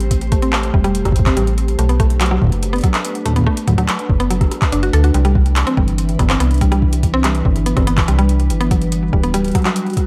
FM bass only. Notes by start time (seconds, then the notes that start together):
Already playing: A1
0.74 E1
1.05 G1
1.37 A1
1.79 B1
2.42 F#1
4.09 F#1
4.72 F#1
4.93 D2
5.14 C2
5.77 G1
6.19 G1
6.40 C2
7.45 G1
7.77 G1
8.08 C2
8.50 G1
9.13 D1